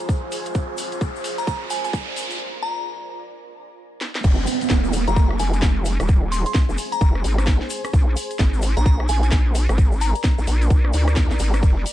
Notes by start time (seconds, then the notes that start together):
Already playing: F4 G#4 C5 G#5, riser
0.09 kick, closed hi-hat, shaker
0.32 open hi-hat, shaker
0.45 closed hi-hat, shaker
0.55 kick, closed hi-hat, shaker
0.78 A#4, open hi-hat, shaker
0.92 closed hi-hat, shaker
1.01 kick, closed hi-hat, shaker
1.16 shaker
1.24 D5, open hi-hat, shaker
1.37 A#5, closed hi-hat, shaker
1.47 A#5, kick, closed hi-hat, shaker
1.70 G#5, open hi-hat, shaker
1.84 G#5, closed hi-hat, shaker
1.93 kick, closed hi-hat, shaker
2.16 open hi-hat, shaker
2.30 closed hi-hat, shaker
2.63 A#5
4.01 snare
4.15 snare
4.24 F1, kick, closed hi-hat, crash, downlifter, shaker
4.47 open hi-hat, shaker
4.61 G#4, closed hi-hat, shaker
4.70 D#1, kick, snare, closed hi-hat, shaker
4.76 G#5
4.84 shaker
4.93 open hi-hat, shaker
5.07 F1 A#5, closed hi-hat, shaker
5.16 A#5, kick, closed hi-hat, shaker
5.31 C5, cross-stick
5.39 F1 G#5, open hi-hat, shaker
5.53 G#5, closed hi-hat, shaker
5.62 F1, kick, snare, closed hi-hat, shaker
5.85 open hi-hat, shaker
6.00 D#1, cross-stick, closed hi-hat, shaker
6.09 kick, closed hi-hat, shaker
6.32 C6, open hi-hat, shaker
6.46 C6, closed hi-hat, shaker
6.54 kick, snare, closed hi-hat, shaker
6.69 F1, shaker
6.78 open hi-hat, shaker
6.92 A#5, closed hi-hat, shaker
7.01 F1 A#5, kick, closed hi-hat, shaker
7.15 cross-stick
7.24 G#1, open hi-hat, shaker
7.38 cross-stick, closed hi-hat, shaker
7.47 kick, snare, closed hi-hat, shaker
7.61 snare
7.70 open hi-hat, shaker
7.84 cross-stick, closed hi-hat, shaker
7.93 A#1, kick, closed hi-hat, shaker
8.17 open hi-hat, shaker
8.31 closed hi-hat, shaker
8.39 G#1, kick, snare, closed hi-hat, shaker
8.54 A#4, shaker
8.62 open hi-hat, shaker
8.77 A#1 A#5, closed hi-hat, shaker
8.86 A#5, kick, closed hi-hat, shaker
9.00 cross-stick
9.09 A#1 G#5, open hi-hat, shaker
9.23 G#5, closed hi-hat, shaker
9.30 A#1 D5, kick, snare, closed hi-hat, shaker
9.55 open hi-hat, shaker
9.61 A#5
9.69 G#1, cross-stick, closed hi-hat, shaker
9.78 kick, closed hi-hat, shaker
9.92 shaker
10.01 A#5, open hi-hat, shaker
10.15 closed hi-hat, shaker
10.24 kick, snare, closed hi-hat, shaker
10.38 A#1, shaker
10.47 A#1, open hi-hat, shaker
10.62 closed hi-hat, shaker
10.70 A#1, kick, closed hi-hat, shaker
10.85 cross-stick
10.93 D2, open hi-hat, shaker
11.08 cross-stick, closed hi-hat, shaker
11.16 kick, snare, closed hi-hat, shaker
11.30 A#1, snare, shaker
11.39 G#1, open hi-hat, shaker
11.54 cross-stick, closed hi-hat, shaker
11.63 F1, kick, closed hi-hat, ride, shaker
11.86 open hi-hat, shaker